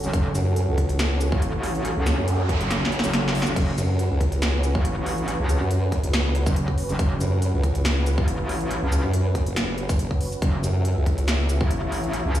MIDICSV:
0, 0, Header, 1, 6, 480
1, 0, Start_track
1, 0, Key_signature, 3, "minor"
1, 0, Tempo, 428571
1, 151, Time_signature, 4, 2, 24, 8
1, 13888, End_track
2, 0, Start_track
2, 0, Title_t, "Supersaw synth"
2, 0, Program_c, 0, 81
2, 0, Note_on_c, 0, 61, 78
2, 0, Note_on_c, 0, 66, 73
2, 0, Note_on_c, 0, 69, 90
2, 3972, Note_off_c, 0, 69, 0
2, 3990, Note_on_c, 0, 71, 88
2, 11651, Note_off_c, 0, 71, 0
2, 11671, Note_on_c, 0, 76, 88
2, 13888, Note_off_c, 0, 61, 0
2, 13888, Note_off_c, 0, 66, 0
2, 13888, Note_off_c, 0, 76, 0
2, 13888, End_track
3, 0, Start_track
3, 0, Title_t, "Wobble bass"
3, 0, Program_c, 1, 39
3, 391, Note_on_c, 1, 42, 100
3, 739, Note_off_c, 1, 42, 0
3, 760, Note_on_c, 1, 37, 101
3, 1460, Note_off_c, 1, 37, 0
3, 2440, Note_on_c, 1, 42, 101
3, 2900, Note_off_c, 1, 42, 0
3, 3161, Note_on_c, 1, 33, 100
3, 3380, Note_off_c, 1, 33, 0
3, 4231, Note_on_c, 1, 42, 99
3, 4579, Note_off_c, 1, 42, 0
3, 4600, Note_on_c, 1, 37, 99
3, 5299, Note_off_c, 1, 37, 0
3, 6280, Note_on_c, 1, 42, 99
3, 6740, Note_off_c, 1, 42, 0
3, 6760, Note_on_c, 1, 37, 101
3, 7219, Note_off_c, 1, 37, 0
3, 8071, Note_on_c, 1, 42, 99
3, 8419, Note_off_c, 1, 42, 0
3, 8440, Note_on_c, 1, 37, 102
3, 9140, Note_off_c, 1, 37, 0
3, 10121, Note_on_c, 1, 42, 98
3, 10580, Note_off_c, 1, 42, 0
3, 10600, Note_on_c, 1, 30, 95
3, 11299, Note_off_c, 1, 30, 0
3, 11911, Note_on_c, 1, 42, 98
3, 12259, Note_off_c, 1, 42, 0
3, 12280, Note_on_c, 1, 37, 102
3, 12980, Note_off_c, 1, 37, 0
3, 13888, End_track
4, 0, Start_track
4, 0, Title_t, "Wobble bass"
4, 0, Program_c, 2, 39
4, 41, Note_on_c, 2, 30, 99
4, 134, Note_off_c, 2, 30, 0
4, 151, Note_on_c, 2, 30, 98
4, 373, Note_off_c, 2, 30, 0
4, 1480, Note_on_c, 2, 33, 98
4, 1699, Note_off_c, 2, 33, 0
4, 1719, Note_on_c, 2, 33, 98
4, 2179, Note_off_c, 2, 33, 0
4, 2200, Note_on_c, 2, 37, 98
4, 2419, Note_off_c, 2, 37, 0
4, 2920, Note_on_c, 2, 30, 96
4, 3140, Note_off_c, 2, 30, 0
4, 3401, Note_on_c, 2, 30, 97
4, 3860, Note_off_c, 2, 30, 0
4, 3881, Note_on_c, 2, 30, 94
4, 3974, Note_off_c, 2, 30, 0
4, 3991, Note_on_c, 2, 30, 101
4, 4213, Note_off_c, 2, 30, 0
4, 5320, Note_on_c, 2, 33, 98
4, 5539, Note_off_c, 2, 33, 0
4, 5561, Note_on_c, 2, 33, 99
4, 6020, Note_off_c, 2, 33, 0
4, 6040, Note_on_c, 2, 37, 95
4, 6260, Note_off_c, 2, 37, 0
4, 7240, Note_on_c, 2, 30, 96
4, 7459, Note_off_c, 2, 30, 0
4, 7721, Note_on_c, 2, 30, 99
4, 7814, Note_off_c, 2, 30, 0
4, 7831, Note_on_c, 2, 30, 99
4, 8053, Note_off_c, 2, 30, 0
4, 9160, Note_on_c, 2, 33, 96
4, 9380, Note_off_c, 2, 33, 0
4, 9400, Note_on_c, 2, 33, 99
4, 9859, Note_off_c, 2, 33, 0
4, 9881, Note_on_c, 2, 37, 93
4, 10100, Note_off_c, 2, 37, 0
4, 11671, Note_on_c, 2, 30, 98
4, 11893, Note_off_c, 2, 30, 0
4, 13000, Note_on_c, 2, 33, 98
4, 13219, Note_off_c, 2, 33, 0
4, 13241, Note_on_c, 2, 33, 99
4, 13700, Note_off_c, 2, 33, 0
4, 13720, Note_on_c, 2, 37, 95
4, 13888, Note_off_c, 2, 37, 0
4, 13888, End_track
5, 0, Start_track
5, 0, Title_t, "Noise sweep"
5, 0, Program_c, 3, 103
5, 2071, Note_on_c, 3, 60, 64
5, 3991, Note_off_c, 3, 60, 0
5, 13888, End_track
6, 0, Start_track
6, 0, Title_t, "Drums"
6, 40, Note_on_c, 9, 42, 35
6, 40, Note_on_c, 9, 82, 54
6, 151, Note_off_c, 9, 42, 0
6, 151, Note_on_c, 9, 36, 115
6, 151, Note_on_c, 9, 42, 80
6, 152, Note_off_c, 9, 82, 0
6, 263, Note_off_c, 9, 36, 0
6, 263, Note_off_c, 9, 42, 0
6, 390, Note_on_c, 9, 42, 53
6, 390, Note_on_c, 9, 82, 84
6, 502, Note_off_c, 9, 42, 0
6, 502, Note_off_c, 9, 82, 0
6, 631, Note_on_c, 9, 42, 80
6, 743, Note_off_c, 9, 42, 0
6, 871, Note_on_c, 9, 36, 60
6, 871, Note_on_c, 9, 42, 52
6, 983, Note_off_c, 9, 36, 0
6, 983, Note_off_c, 9, 42, 0
6, 1000, Note_on_c, 9, 42, 61
6, 1111, Note_off_c, 9, 42, 0
6, 1111, Note_on_c, 9, 38, 121
6, 1111, Note_on_c, 9, 42, 82
6, 1111, Note_on_c, 9, 82, 59
6, 1223, Note_off_c, 9, 38, 0
6, 1223, Note_off_c, 9, 42, 0
6, 1223, Note_off_c, 9, 82, 0
6, 1351, Note_on_c, 9, 42, 55
6, 1351, Note_on_c, 9, 82, 64
6, 1463, Note_off_c, 9, 42, 0
6, 1463, Note_off_c, 9, 82, 0
6, 1480, Note_on_c, 9, 36, 110
6, 1591, Note_on_c, 9, 42, 78
6, 1592, Note_off_c, 9, 36, 0
6, 1703, Note_off_c, 9, 42, 0
6, 1830, Note_on_c, 9, 46, 96
6, 1942, Note_off_c, 9, 46, 0
6, 1960, Note_on_c, 9, 42, 36
6, 2070, Note_off_c, 9, 42, 0
6, 2070, Note_on_c, 9, 42, 83
6, 2182, Note_off_c, 9, 42, 0
6, 2311, Note_on_c, 9, 38, 61
6, 2311, Note_on_c, 9, 42, 57
6, 2311, Note_on_c, 9, 82, 84
6, 2423, Note_off_c, 9, 38, 0
6, 2423, Note_off_c, 9, 42, 0
6, 2423, Note_off_c, 9, 82, 0
6, 2550, Note_on_c, 9, 42, 83
6, 2662, Note_off_c, 9, 42, 0
6, 2791, Note_on_c, 9, 36, 62
6, 2791, Note_on_c, 9, 42, 56
6, 2903, Note_off_c, 9, 36, 0
6, 2903, Note_off_c, 9, 42, 0
6, 2920, Note_on_c, 9, 42, 62
6, 3031, Note_off_c, 9, 42, 0
6, 3031, Note_on_c, 9, 38, 73
6, 3031, Note_on_c, 9, 42, 84
6, 3143, Note_off_c, 9, 38, 0
6, 3143, Note_off_c, 9, 42, 0
6, 3191, Note_on_c, 9, 38, 75
6, 3271, Note_on_c, 9, 42, 57
6, 3303, Note_off_c, 9, 38, 0
6, 3351, Note_on_c, 9, 38, 85
6, 3383, Note_off_c, 9, 42, 0
6, 3401, Note_on_c, 9, 42, 38
6, 3401, Note_on_c, 9, 82, 83
6, 3463, Note_off_c, 9, 38, 0
6, 3511, Note_off_c, 9, 42, 0
6, 3511, Note_on_c, 9, 38, 91
6, 3511, Note_on_c, 9, 42, 82
6, 3513, Note_off_c, 9, 82, 0
6, 3623, Note_off_c, 9, 38, 0
6, 3623, Note_off_c, 9, 42, 0
6, 3671, Note_on_c, 9, 38, 100
6, 3751, Note_on_c, 9, 46, 99
6, 3783, Note_off_c, 9, 38, 0
6, 3831, Note_on_c, 9, 38, 106
6, 3863, Note_off_c, 9, 46, 0
6, 3881, Note_on_c, 9, 42, 38
6, 3881, Note_on_c, 9, 82, 55
6, 3943, Note_off_c, 9, 38, 0
6, 3991, Note_off_c, 9, 42, 0
6, 3991, Note_on_c, 9, 36, 122
6, 3991, Note_on_c, 9, 42, 89
6, 3991, Note_on_c, 9, 49, 78
6, 3993, Note_off_c, 9, 82, 0
6, 4103, Note_off_c, 9, 36, 0
6, 4103, Note_off_c, 9, 42, 0
6, 4103, Note_off_c, 9, 49, 0
6, 4231, Note_on_c, 9, 42, 59
6, 4231, Note_on_c, 9, 82, 83
6, 4343, Note_off_c, 9, 42, 0
6, 4343, Note_off_c, 9, 82, 0
6, 4471, Note_on_c, 9, 42, 87
6, 4583, Note_off_c, 9, 42, 0
6, 4711, Note_on_c, 9, 36, 63
6, 4711, Note_on_c, 9, 42, 58
6, 4823, Note_off_c, 9, 36, 0
6, 4823, Note_off_c, 9, 42, 0
6, 4840, Note_on_c, 9, 42, 66
6, 4951, Note_off_c, 9, 42, 0
6, 4951, Note_on_c, 9, 38, 121
6, 4951, Note_on_c, 9, 42, 87
6, 4951, Note_on_c, 9, 82, 55
6, 5063, Note_off_c, 9, 38, 0
6, 5063, Note_off_c, 9, 42, 0
6, 5063, Note_off_c, 9, 82, 0
6, 5191, Note_on_c, 9, 42, 58
6, 5191, Note_on_c, 9, 82, 62
6, 5303, Note_off_c, 9, 42, 0
6, 5303, Note_off_c, 9, 82, 0
6, 5320, Note_on_c, 9, 36, 111
6, 5431, Note_on_c, 9, 42, 89
6, 5432, Note_off_c, 9, 36, 0
6, 5543, Note_off_c, 9, 42, 0
6, 5671, Note_on_c, 9, 46, 100
6, 5783, Note_off_c, 9, 46, 0
6, 5800, Note_on_c, 9, 42, 38
6, 5911, Note_off_c, 9, 42, 0
6, 5911, Note_on_c, 9, 42, 86
6, 6023, Note_off_c, 9, 42, 0
6, 6151, Note_on_c, 9, 42, 59
6, 6151, Note_on_c, 9, 82, 77
6, 6263, Note_off_c, 9, 42, 0
6, 6263, Note_off_c, 9, 82, 0
6, 6391, Note_on_c, 9, 42, 85
6, 6503, Note_off_c, 9, 42, 0
6, 6631, Note_on_c, 9, 36, 65
6, 6631, Note_on_c, 9, 42, 56
6, 6743, Note_off_c, 9, 36, 0
6, 6743, Note_off_c, 9, 42, 0
6, 6760, Note_on_c, 9, 42, 66
6, 6871, Note_off_c, 9, 42, 0
6, 6871, Note_on_c, 9, 38, 126
6, 6871, Note_on_c, 9, 42, 85
6, 6983, Note_off_c, 9, 38, 0
6, 6983, Note_off_c, 9, 42, 0
6, 7111, Note_on_c, 9, 42, 57
6, 7223, Note_off_c, 9, 42, 0
6, 7240, Note_on_c, 9, 36, 117
6, 7240, Note_on_c, 9, 82, 79
6, 7351, Note_on_c, 9, 42, 84
6, 7352, Note_off_c, 9, 36, 0
6, 7352, Note_off_c, 9, 82, 0
6, 7463, Note_off_c, 9, 42, 0
6, 7480, Note_on_c, 9, 36, 65
6, 7591, Note_on_c, 9, 46, 92
6, 7592, Note_off_c, 9, 36, 0
6, 7703, Note_off_c, 9, 46, 0
6, 7720, Note_on_c, 9, 42, 39
6, 7720, Note_on_c, 9, 82, 51
6, 7831, Note_off_c, 9, 42, 0
6, 7831, Note_on_c, 9, 36, 127
6, 7831, Note_on_c, 9, 42, 88
6, 7832, Note_off_c, 9, 82, 0
6, 7943, Note_off_c, 9, 36, 0
6, 7943, Note_off_c, 9, 42, 0
6, 8071, Note_on_c, 9, 42, 56
6, 8071, Note_on_c, 9, 82, 77
6, 8183, Note_off_c, 9, 42, 0
6, 8183, Note_off_c, 9, 82, 0
6, 8311, Note_on_c, 9, 42, 85
6, 8423, Note_off_c, 9, 42, 0
6, 8551, Note_on_c, 9, 36, 65
6, 8551, Note_on_c, 9, 42, 55
6, 8663, Note_off_c, 9, 36, 0
6, 8663, Note_off_c, 9, 42, 0
6, 8680, Note_on_c, 9, 42, 63
6, 8791, Note_off_c, 9, 42, 0
6, 8791, Note_on_c, 9, 38, 127
6, 8791, Note_on_c, 9, 42, 83
6, 8791, Note_on_c, 9, 82, 53
6, 8903, Note_off_c, 9, 38, 0
6, 8903, Note_off_c, 9, 42, 0
6, 8903, Note_off_c, 9, 82, 0
6, 9031, Note_on_c, 9, 42, 54
6, 9031, Note_on_c, 9, 82, 61
6, 9143, Note_off_c, 9, 42, 0
6, 9143, Note_off_c, 9, 82, 0
6, 9160, Note_on_c, 9, 36, 117
6, 9271, Note_on_c, 9, 42, 81
6, 9272, Note_off_c, 9, 36, 0
6, 9383, Note_off_c, 9, 42, 0
6, 9511, Note_on_c, 9, 46, 94
6, 9623, Note_off_c, 9, 46, 0
6, 9641, Note_on_c, 9, 42, 38
6, 9752, Note_off_c, 9, 42, 0
6, 9752, Note_on_c, 9, 42, 80
6, 9864, Note_off_c, 9, 42, 0
6, 9992, Note_on_c, 9, 42, 55
6, 9992, Note_on_c, 9, 82, 81
6, 10104, Note_off_c, 9, 42, 0
6, 10104, Note_off_c, 9, 82, 0
6, 10232, Note_on_c, 9, 42, 82
6, 10344, Note_off_c, 9, 42, 0
6, 10471, Note_on_c, 9, 36, 66
6, 10471, Note_on_c, 9, 42, 54
6, 10583, Note_off_c, 9, 36, 0
6, 10583, Note_off_c, 9, 42, 0
6, 10600, Note_on_c, 9, 42, 59
6, 10712, Note_off_c, 9, 42, 0
6, 10712, Note_on_c, 9, 38, 127
6, 10712, Note_on_c, 9, 42, 80
6, 10824, Note_off_c, 9, 38, 0
6, 10824, Note_off_c, 9, 42, 0
6, 10951, Note_on_c, 9, 42, 54
6, 11063, Note_off_c, 9, 42, 0
6, 11080, Note_on_c, 9, 36, 120
6, 11080, Note_on_c, 9, 82, 78
6, 11191, Note_on_c, 9, 42, 80
6, 11192, Note_off_c, 9, 36, 0
6, 11192, Note_off_c, 9, 82, 0
6, 11303, Note_off_c, 9, 42, 0
6, 11320, Note_on_c, 9, 36, 66
6, 11431, Note_on_c, 9, 46, 89
6, 11432, Note_off_c, 9, 36, 0
6, 11543, Note_off_c, 9, 46, 0
6, 11560, Note_on_c, 9, 42, 37
6, 11560, Note_on_c, 9, 82, 51
6, 11671, Note_off_c, 9, 42, 0
6, 11671, Note_on_c, 9, 36, 124
6, 11671, Note_on_c, 9, 42, 77
6, 11672, Note_off_c, 9, 82, 0
6, 11783, Note_off_c, 9, 36, 0
6, 11783, Note_off_c, 9, 42, 0
6, 11912, Note_on_c, 9, 42, 52
6, 11912, Note_on_c, 9, 82, 80
6, 12024, Note_off_c, 9, 42, 0
6, 12024, Note_off_c, 9, 82, 0
6, 12151, Note_on_c, 9, 42, 79
6, 12263, Note_off_c, 9, 42, 0
6, 12391, Note_on_c, 9, 36, 63
6, 12391, Note_on_c, 9, 42, 54
6, 12503, Note_off_c, 9, 36, 0
6, 12503, Note_off_c, 9, 42, 0
6, 12520, Note_on_c, 9, 42, 59
6, 12631, Note_off_c, 9, 42, 0
6, 12631, Note_on_c, 9, 38, 125
6, 12631, Note_on_c, 9, 42, 80
6, 12631, Note_on_c, 9, 82, 55
6, 12743, Note_off_c, 9, 38, 0
6, 12743, Note_off_c, 9, 42, 0
6, 12743, Note_off_c, 9, 82, 0
6, 12871, Note_on_c, 9, 42, 51
6, 12871, Note_on_c, 9, 82, 64
6, 12983, Note_off_c, 9, 42, 0
6, 12983, Note_off_c, 9, 82, 0
6, 13000, Note_on_c, 9, 36, 113
6, 13111, Note_on_c, 9, 42, 79
6, 13112, Note_off_c, 9, 36, 0
6, 13223, Note_off_c, 9, 42, 0
6, 13351, Note_on_c, 9, 46, 91
6, 13463, Note_off_c, 9, 46, 0
6, 13480, Note_on_c, 9, 42, 36
6, 13591, Note_off_c, 9, 42, 0
6, 13591, Note_on_c, 9, 42, 77
6, 13703, Note_off_c, 9, 42, 0
6, 13831, Note_on_c, 9, 42, 53
6, 13831, Note_on_c, 9, 82, 85
6, 13888, Note_off_c, 9, 42, 0
6, 13888, Note_off_c, 9, 82, 0
6, 13888, End_track
0, 0, End_of_file